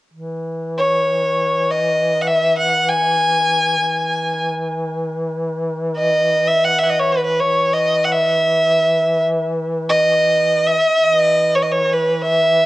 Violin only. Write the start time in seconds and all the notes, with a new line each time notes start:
0.78 C#5
1.71 D#5
2.21 F#5
2.27 E5
2.58 F#5
2.88 G#5
5.97 D#5
6.47 E5
6.64 F#5
6.78 E5
6.83 E5 F#5
6.89 D#5
6.99 C#5
7.12 B4
7.25 B4
7.40 C#5
7.73 D#5
8.04 F#5
8.12 E5
9.89 D#5
10.67 E5
11.04 E5
11.15 D#5
11.55 C#5
11.62 D#5
11.71 C#5
11.93 B4
12.22 E5